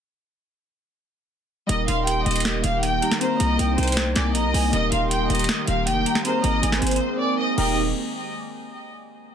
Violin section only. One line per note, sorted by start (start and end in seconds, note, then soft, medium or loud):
1.69 1.85 D#5 loud
1.88 2.04 F5 medium
2.07 2.23 G5 medium
2.26 2.62 D#5 medium
2.64 2.80 F5 medium
2.83 3.19 G5 medium
3.21 3.37 C5 medium
3.40 3.76 D#5 medium
3.78 4.14 C5 medium
4.16 4.32 D5 medium
4.35 4.71 D#5 medium
4.73 4.89 D#5 loud
4.92 5.07 F5 medium
5.11 5.27 G5 medium
5.30 5.66 D#5 medium
5.68 5.83 F5 medium
5.87 6.23 G5 medium
6.25 6.40 C5 medium
6.44 6.80 D#5 medium
6.82 7.17 C5 medium
7.20 7.35 D5 medium
7.39 7.57 D#5 medium
7.58 7.75 D#5 medium